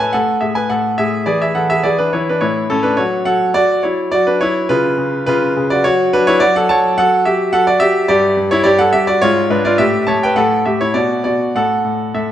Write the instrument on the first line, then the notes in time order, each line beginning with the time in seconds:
grand piano
Already playing: A2 A4 C#5 E5 A5
0.00 B4 G#5
0.13 A2 A4 F#5
0.41 A2 G#4 E5
0.55 B4 G#5
0.70 A2 A4 F#5
0.98 A2 G#4 E5
1.26 E3 G#4 D5
1.42 G#4 E5
1.55 E3 A4 F#5
1.70 G#4 E5
1.83 E3 G#4 D5
1.98 D4 B4
2.13 E3 E4 C#5
2.29 D4 B4
2.41 A2 E4 C#5
2.70 A2 C#4 A4
2.83 D4 B4
2.97 F#3 F#4 C#5
3.25 F#3 A4 F#5
3.54 F#3 F#4 D5
3.83 F#3 E4 C#5
4.12 F#3 F#4 D5
4.27 D4 B4
4.41 F#3 E4 C#5
4.69 C#3 F4 B4
4.98 C#3
5.26 C#3 F4 B4
5.57 C#3
5.70 F#4 D5
5.84 F#3 F#4 C#5
6.13 F#3 D4 B4
6.27 E4 C#5
6.40 F#3 F#4 D5
6.56 A4 F#5
6.69 F#3 C#5 A5
6.98 F#3 A4 F#5
7.25 F#3 G4 E5
7.53 F#3 A4 F#5
7.67 F#4 D5
7.80 F#3 G4 E5
8.08 G2 G4 D5
8.37 G2
8.51 E4 C#5
8.64 G2 G4 D5
8.79 A4 F#5
8.93 G2 G4 E5
9.07 F#4 D5
9.22 G#2 F4 C#5
9.50 G#2 D4 B4
9.65 F4 D5
9.78 A2 G4 E5
10.07 A2 C#5 A5
10.23 B4 G5
10.36 A2 A4 F#5
10.66 A2 G4 E5
10.81 E4 C#5
10.94 B2 F#4 D5
11.24 B2 F#4 D5
11.55 A2 A4 F#5
11.85 A2
12.14 A2 A4 E5